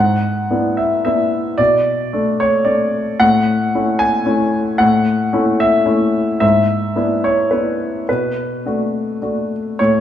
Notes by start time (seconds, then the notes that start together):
Already playing: G#2 F#5
0.50 B3 D4 E4
0.77 E5
1.05 B3 D4 E4 E5
1.58 B2 D5
2.13 A3 D4
2.40 C#5
2.65 A3 D4 D5
3.20 A2 F#5
3.75 A3 C#4 E4
3.99 G#5
4.25 A3 C#4 E4
4.78 A2 F#5
5.33 A3 C#4 E4
5.60 E5
5.86 A3 C#4 E4
6.40 G#2 E5
6.96 B3 D4 E4
7.24 C#5
7.51 B3 D4 E4 B4
8.09 B2 B4
8.66 A3 D4 F#4
9.22 A3 D4 F#4
9.79 A2 C#5